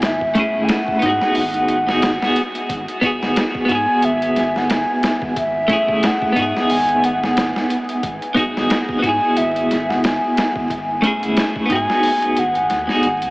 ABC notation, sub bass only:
X:1
M:4/4
L:1/16
Q:"Swing 16ths" 1/4=90
K:G#phr
V:1 name="Sub bass" clef=bass
G,,,2 D,,, G,,, z2 G,, z G,,,4- G,,, D,,, z2 | G,,, z D,,, G,,, z2 G,, z G,,,4- G,,, z2 G,,,- | G,,,2 D,,, G,,, z2 G,, z G,,,4- G,,, z3 | G,,, z D,,, G,,, z2 G,, z G,,,4- G,,, z2 G,,,- |
G,,,2 D,,, G,,, z2 G,, z3 G,,,2 D,, z G,,, D,, |]